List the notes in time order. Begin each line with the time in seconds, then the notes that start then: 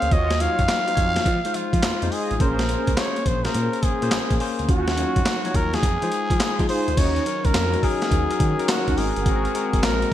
Already playing: A#3 C4 C#4 G#4 C5 F5
0.02 D2, closed hi-hat
0.11 D#2 F4 F#4 C#5 D#5, kick, closed hi-hat
0.30 snare, closed hi-hat
0.40 F#3 D#4 F4 F#4 C#5 F5, closed hi-hat
0.59 F#2, kick, closed hi-hat
0.69 snare, clap, closed hi-hat
0.87 F#3 D#4 F4 C5, closed hi-hat
0.95 F2 C#5, kick, closed hi-hat
1.16 snare, closed hi-hat
1.26 F3, kick, closed hi-hat
1.45 G#3 D#4 F4 C5, closed hi-hat
1.54 F3 F4, closed hi-hat
1.73 F3, kick, closed hi-hat
1.83 F2, snare, clap, closed hi-hat
2.02 F2 G#3 D#4 F4 C5, closed hi-hat
2.11 F4 G#4 D#5, open hi-hat
2.31 A1, closed hi-hat
2.40 A#1 A#3 C#4 G#4 A#4 C5, kick, closed hi-hat
2.59 snare, closed hi-hat
2.69 C#4 G#4 C5, closed hi-hat
2.87 C#2, kick, closed hi-hat
2.97 A#3 C#4 G#4 C5 C#5, snare, clap, closed hi-hat
3.16 closed hi-hat
3.26 A#1 C5, kick, closed hi-hat
3.45 A#3 C#4 G#4 A#4 C5, snare, closed hi-hat
3.54 A#2, closed hi-hat
3.73 closed hi-hat
3.83 A#2 G#4, kick, closed hi-hat
4.02 A#2 A#3 C#4 G#4 C5, closed hi-hat
4.11 A#1, snare, clap, closed hi-hat
4.31 A#1, kick, closed hi-hat
4.40 A#3 C#4 G#4 C5, open hi-hat
4.59 D2, closed hi-hat
4.68 D#2 C#4 F4 F#4, kick, closed hi-hat
4.88 snare, closed hi-hat
4.97 F#3 C#4 D#4 F4 F#4 C#5 F5, closed hi-hat
5.16 F2, kick, closed hi-hat
5.26 snare, clap, closed hi-hat
5.45 F3 D#4 F4 C#5, closed hi-hat
5.51 D#2 F#3, kick, closed hi-hat
5.55 A#4
5.73 G#4, snare, closed hi-hat
5.83 F2, kick, closed hi-hat
6.02 F3 G#3 D#4 F4 C5, closed hi-hat
6.12 closed hi-hat
6.30 F3, kick, closed hi-hat
6.40 snare, clap, closed hi-hat
6.59 F3 G#3 D#4 F4 G#4, kick, closed hi-hat
6.68 D#4 F4 G#4 C5, open hi-hat
6.88 D2, closed hi-hat
6.97 D#2 D#3 C#4 D#4 F#4 C#5, kick, closed hi-hat, crash
7.16 closed hi-hat
7.26 F#3 C#4 D#4 A#4, closed hi-hat
7.45 C#2 A#4, kick, closed hi-hat
7.54 F2, snare, clap, closed hi-hat
7.73 F#3 C#4 D#4 A#4, closed hi-hat
7.83 F#3 C#4 D#4 G#4 A#4, kick, open hi-hat
8.02 snare, closed hi-hat
8.11 D#2, kick, closed hi-hat
8.30 F#3 C#4 D#4 A#4, closed hi-hat
8.40 D#3, kick, closed hi-hat
8.59 F#3 C#4 D#4 A#4, closed hi-hat
8.69 F#4, snare, clap, closed hi-hat
8.87 D#2 C#4 D#4 F#4, kick, closed hi-hat
8.97 G#1 G#3 C4 F#4 G#4 A#4, open hi-hat
9.16 G1 C4 F#4 A#4, closed hi-hat
9.26 G#1 C4 F#4 A#4, kick, closed hi-hat
9.45 closed hi-hat
9.55 G#3 C4 F#4 A#4, closed hi-hat
9.73 F#1, kick, closed hi-hat
9.83 A#1 A#4, snare, clap, closed hi-hat
10.02 closed hi-hat